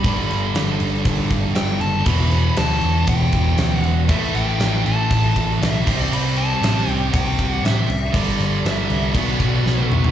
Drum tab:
CC |x-x-x-x-x-x-x-x-|x-x-x-x-x-x-x-x-|x-x-x-x-x-x-x-x-|x-x-x-x-x-x-x-x-|
SD |--o-o-------o---|--o-oo------o---|--o-o-------o---|----oo------o---|
T1 |----------------|----------------|----------------|----------------|
T2 |----------------|----------------|----------------|----------------|
FT |----------------|----------------|----------------|----------------|
BD |o-------o-o-----|o-------o-o-----|o-------o-o---o-|--------o-o-----|

CC |x-x-x-x-x-x-----|
SD |--o-oo------o---|
T1 |-------------o--|
T2 |--------------o-|
FT |---------------o|
BD |o-------o-o-----|